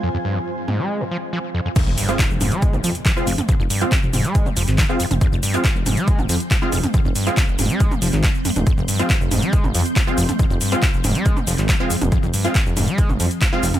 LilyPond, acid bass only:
\new Staff \with { instrumentName = "Acid bass" } { \clef bass \time 4/4 \key f \minor \tempo 4 = 139 f,16 f,16 g,16 f,16 r8 aes,16 aes8 f,16 f16 r16 f16 r16 f,16 f,16 | f,16 f,16 g,16 f,16 r8 aes,16 aes8 f,16 f16 r16 f16 r16 f,16 f,16 | f,16 f,16 g,16 f,16 r8 aes,16 aes8 f,16 f16 r16 f16 r16 f,16 f,16 | f,16 f,16 g,16 f,16 r8 aes,16 aes8 f,16 f16 r16 f16 r16 f,16 f,16 |
f,16 f,16 g,16 f,16 r8 aes,16 aes8 f,16 f16 r16 f16 r16 f,16 f,16 | f,16 f,16 g,16 f,16 r8 aes,16 aes8 f,16 f16 r16 f16 r16 f,16 f,16 | f,16 f,16 g,16 f,16 r8 aes,16 aes8 f,16 f16 r16 f16 r16 f,16 f,16 | f,16 f,16 g,16 f,16 r8 aes,16 aes8 f,16 f16 r16 f16 r16 f,16 f,16 | }